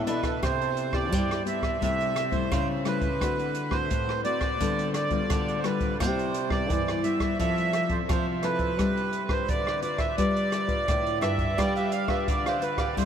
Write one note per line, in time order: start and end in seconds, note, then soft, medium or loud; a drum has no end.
0.00 0.39 B2 medium
0.06 0.39 B2 medium
0.06 0.37 B3 medium
0.06 0.23 D4 medium
0.06 0.37 D4 medium
0.06 0.37 A4 medium
0.06 0.23 A4 medium
0.06 0.22 B4 medium
0.06 0.40 B4 medium
0.06 0.21 E5 medium
0.06 closed hi-hat medium
0.23 0.41 A4 soft
0.23 0.41 B4 soft
0.23 0.40 E5 soft
0.23 kick medium
0.23 cross-stick medium
0.23 closed hi-hat soft
0.43 1.09 C3 medium
0.43 0.90 E4 medium
0.43 0.90 G4 medium
0.43 0.97 C5 medium
0.43 kick medium
0.43 cross-stick medium
0.43 closed hi-hat medium
0.61 closed hi-hat soft
0.77 closed hi-hat soft
0.92 1.40 B3 soft
0.92 1.41 E4 medium
0.92 1.41 G4 medium
0.92 1.43 D5 medium
0.92 kick medium
0.92 cross-stick medium
1.11 1.78 G2 medium
1.11 1.42 G3 medium
1.11 kick medium
1.11 closed hi-hat medium
1.31 cross-stick medium
1.31 closed hi-hat soft
1.45 1.76 B3 medium
1.45 1.76 E4 medium
1.45 1.76 G4 medium
1.45 1.82 E5 medium
1.45 closed hi-hat soft
1.62 kick medium
1.62 cross-stick medium
1.62 closed hi-hat soft
1.81 2.48 C3 medium
1.81 2.14 G3 medium
1.81 2.14 A3 medium
1.81 2.15 E4 medium
1.81 2.37 E5 loud
1.81 kick medium
1.81 closed hi-hat medium
2.01 closed hi-hat soft
2.16 cross-stick medium
2.16 closed hi-hat soft
2.31 2.80 G3 medium
2.31 2.80 A3 medium
2.31 2.80 E4 medium
2.31 2.51 C5 medium
2.31 kick medium
2.31 closed hi-hat soft
2.52 3.21 C#3 loud
2.52 2.68 C5 medium
2.52 kick medium
2.52 cross-stick medium
2.52 closed hi-hat medium
2.85 3.06 G3 medium
2.85 3.06 A3 medium
2.85 3.07 E4 medium
2.85 3.77 B4 medium
2.85 cross-stick medium
2.85 closed hi-hat soft
3.01 kick medium
3.01 closed hi-hat soft
3.20 3.87 D3 medium
3.20 3.54 A3 medium
3.20 3.54 C4 medium
3.20 3.54 F#4 medium
3.20 kick medium
3.20 cross-stick medium
3.20 closed hi-hat medium
3.39 closed hi-hat soft
3.55 closed hi-hat soft
3.71 4.19 A3 medium
3.71 4.19 C4 medium
3.71 4.19 F#4 medium
3.71 4.21 C5 medium
3.71 kick medium
3.71 cross-stick medium
3.91 4.57 A2 medium
3.91 kick medium
3.91 closed hi-hat medium
4.09 cross-stick medium
4.25 4.55 A3 medium
4.25 4.55 C4 medium
4.25 4.55 F#4 medium
4.25 4.91 D5 loud
4.25 closed hi-hat soft
4.41 kick medium
4.41 cross-stick medium
4.41 closed hi-hat soft
4.61 5.27 D3 medium
4.61 4.94 G3 medium
4.61 4.94 B3 medium
4.61 4.94 F4 medium
4.61 kick medium
4.61 closed hi-hat medium
4.79 closed hi-hat soft
4.94 5.60 D5 medium
4.94 cross-stick medium
4.94 closed hi-hat medium
5.10 5.59 G3 medium
5.10 5.59 B3 medium
5.10 5.59 F4 medium
5.10 kick medium
5.10 closed hi-hat soft
5.30 5.97 D3 medium
5.30 kick medium
5.30 cross-stick medium
5.30 closed hi-hat medium
5.48 closed hi-hat soft
5.59 5.66 C5 medium
5.64 5.94 G3 medium
5.64 5.94 B3 medium
5.64 5.94 F4 medium
5.64 5.98 B4 medium
5.64 cross-stick medium
5.64 closed hi-hat soft
5.81 kick medium
5.81 closed hi-hat soft
6.00 6.66 C3 medium
6.00 6.33 G3 medium
6.00 6.33 E4 medium
6.00 6.49 C5 medium
6.00 kick medium
6.00 cross-stick medium
6.00 closed hi-hat medium
6.19 closed hi-hat soft
6.34 closed hi-hat medium
6.49 6.98 G3 medium
6.49 6.98 B3 medium
6.49 6.98 E4 medium
6.49 7.05 D5 loud
6.49 kick medium
6.49 cross-stick medium
6.69 7.36 G2 medium
6.69 7.00 E3 medium
6.69 kick medium
6.69 closed hi-hat medium
6.88 cross-stick medium
6.88 closed hi-hat soft
7.03 7.33 G3 medium
7.03 7.34 B3 medium
7.03 7.34 E4 medium
7.03 7.38 E5 medium
7.03 closed hi-hat soft
7.20 kick medium
7.20 cross-stick medium
7.20 closed hi-hat soft
7.39 8.06 F3 medium
7.39 7.72 C4 soft
7.39 7.72 E4 medium
7.39 7.73 A4 medium
7.39 7.93 E5 loud
7.39 kick medium
7.39 closed hi-hat medium
7.58 closed hi-hat soft
7.73 cross-stick medium
7.73 closed hi-hat soft
7.88 8.37 C4 medium
7.88 8.37 E4 medium
7.88 8.38 A4 medium
7.88 7.99 C5 medium
7.88 kick medium
7.88 closed hi-hat soft
8.09 8.75 C3 medium
8.09 8.79 F3 loud
8.09 8.26 C5 medium
8.09 kick medium
8.09 cross-stick medium
8.09 closed hi-hat medium
8.43 8.73 C4 medium
8.43 8.73 E4 medium
8.43 8.73 A4 medium
8.43 9.34 B4 medium
8.43 cross-stick medium
8.43 closed hi-hat soft
8.59 kick medium
8.59 closed hi-hat soft
8.79 9.45 G3 medium
8.79 9.11 D4 medium
8.79 9.12 F4 soft
8.79 9.12 B4 medium
8.79 kick medium
8.79 cross-stick medium
8.79 closed hi-hat medium
8.97 closed hi-hat soft
9.13 closed hi-hat soft
9.29 9.77 D4 medium
9.29 9.77 F4 medium
9.29 9.77 B4 medium
9.29 9.49 C5 medium
9.29 kick medium
9.29 cross-stick medium
9.48 10.15 D3 medium
9.48 9.80 D5 medium
9.48 kick medium
9.48 closed hi-hat medium
9.67 cross-stick medium
9.82 10.12 D4 medium
9.82 10.12 F4 medium
9.82 10.12 B4 medium
9.82 10.01 D5 medium
9.82 closed hi-hat soft
9.98 10.16 E5 medium
9.98 kick medium
9.98 cross-stick medium
9.98 closed hi-hat soft
10.17 10.84 G3 medium
10.17 10.65 D4 medium
10.17 10.65 F4 medium
10.17 10.65 B4 medium
10.17 11.19 D5 loud
10.17 kick medium
10.17 closed hi-hat medium
10.36 closed hi-hat soft
10.52 cross-stick medium
10.52 closed hi-hat soft
10.67 11.16 D4 medium
10.67 11.16 F4 medium
10.67 11.16 B4 medium
10.67 kick medium
10.67 closed hi-hat soft
10.88 11.19 A2 medium
10.88 11.54 D3 medium
10.88 kick medium
10.88 cross-stick medium
10.88 closed hi-hat medium
11.06 closed hi-hat soft
11.21 11.53 G2 medium
11.21 11.51 D4 medium
11.21 11.52 F4 medium
11.21 11.52 B4 medium
11.21 11.58 E5 loud
11.21 cross-stick medium
11.21 closed hi-hat soft
11.38 kick medium
11.38 closed hi-hat soft
11.57 12.24 G3 medium
11.57 11.74 D4 soft
11.57 11.90 D4 soft
11.57 11.91 F4 soft
11.57 11.74 G4 medium
11.57 11.91 B4 medium
11.57 11.74 B4 soft
11.57 11.74 D5 loud
11.57 11.75 F5 medium
11.57 kick medium
11.57 cross-stick medium
11.57 closed hi-hat medium
11.76 11.92 G4 medium
11.76 11.92 B4 medium
11.76 11.92 E5 medium
11.76 11.91 F5 medium
11.76 closed hi-hat soft
11.92 12.08 F5 loud
11.92 muted cavaquinho stroke soft
11.92 closed hi-hat soft
12.08 12.56 D4 medium
12.08 12.56 F4 medium
12.08 12.26 G4 medium
12.08 12.25 B4 medium
12.08 12.56 B4 medium
12.08 12.27 E5 medium
12.08 12.25 F5 medium
12.08 kick medium
12.08 cross-stick medium
12.28 12.94 D3 medium
12.28 12.44 D4 soft
12.28 12.44 G4 soft
12.28 12.44 B4 soft
12.28 12.46 D5 loud
12.28 12.45 F5 medium
12.28 kick medium
12.28 closed hi-hat medium
12.46 12.61 G4 soft
12.46 12.61 B4 medium
12.46 12.64 C5 medium
12.46 12.62 F5 medium
12.46 cross-stick medium
12.46 closed hi-hat soft
12.61 12.91 D4 medium
12.61 12.91 F4 medium
12.61 12.91 B4 medium
12.61 12.80 B4 medium
12.61 muted cavaquinho stroke soft
12.61 closed hi-hat soft
12.78 12.96 G4 medium
12.78 12.95 B4 medium
12.78 12.97 D5 medium
12.78 12.95 F5 medium
12.78 kick medium
12.78 cross-stick medium
12.78 closed hi-hat soft
12.96 13.05 G3 medium
12.96 13.05 C4 medium
12.96 13.05 E4 medium
12.96 13.05 E4 soft
12.96 13.05 A4 medium
12.96 13.05 A4 soft
12.96 13.05 C5 loud
12.96 13.05 C5 soft
12.96 13.05 E5 medium
12.96 kick medium
12.96 closed hi-hat medium